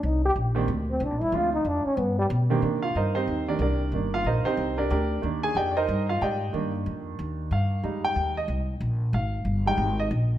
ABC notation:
X:1
M:4/4
L:1/8
Q:"Swing" 1/4=184
K:Cm
V:1 name="Grand piano"
z3 [E,B,CDG] z4 | [F,A,CDF] z6 [E,B,CDG] | z [Ff] [EBce] [CEGc]2 [GBd] [DGBd]2- | [DGBd] [Ff] [EBce] [CEGc]2 [DGBd] [DGBd]2- |
[DGBd] [Aa] [Gdeg] [EBcde]2 [Ff] [Gdeg]2- | [Gdeg] z4 z f2- | f g2 e z4 | f3 g2 e z2 |]
V:2 name="Grand piano"
z8 | z8 | [E,B,D] z4 [E,B,D] z2 | [E,B,D]3 z4 z |
[E,B,D]3 z4 z | [E,B,D]8 | [G,A,E]3 z4 z | z3 [G,A,E] z4 |]
V:3 name="Trombone"
E G z3 C D =E | F E D _D =B, G, z2 | z8 | z8 |
z8 | z8 | z8 | z8 |]
V:4 name="Upright bass" clef=bass
C,,2 B,,,2 D,,2 (3C,, B,,, G,,, | D,,2 F,, z G,,2 =B,,2 | C,2 G,,2 E,,2 C,,2 | G,,,2 B,,, z C,,2 D,,2 |
E,,2 F,,2 G,,2 A,,2 | G,,2 F,,2 E,,2 G,,2 | F,,2 E,,2 C,,2 B,,,2 | A,,,2 G,,,2 A,,,2 B,,,2 |]